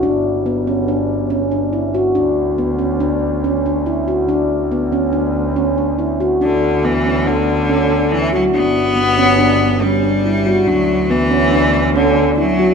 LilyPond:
<<
  \new Staff \with { instrumentName = "Handpan" } { \time 5/4 \key g \lydian \tempo 4 = 141 d'4 b8 cis'8 d'4 cis'8 d'8 e'8 fis'8 | d'4 b8 cis'8 d'4 cis'8 d'8 e'8 fis'8 | d'4 b8 cis'8 d'4 cis'8 d'8 e'8 fis'8 | d'4 b8 cis'8 d'4 cis'8 d'8 e'8 fis'8 |
d'4 b8 cis'8 d'4 cis'8 d'8 e'8 fis'8 | d'4 b8 cis'8 d'4 cis'8 d'8 e'8 fis'8 | }
  \new Staff \with { instrumentName = "Cello" } { \clef bass \time 5/4 \key g \lydian r1 r4 | r1 r4 | r1 r4 | d4 e4 d2 e8 fis8 |
b2. g2 | fis4 e2 d4 fis4 | }
  \new Staff \with { instrumentName = "Double bass" } { \clef bass \time 5/4 \key g \lydian g,,1~ g,,4 | d,1~ d,4 | d,1~ d,4 | d,1~ d,4 |
g,,1~ g,,4 | d,1~ d,4 | }
>>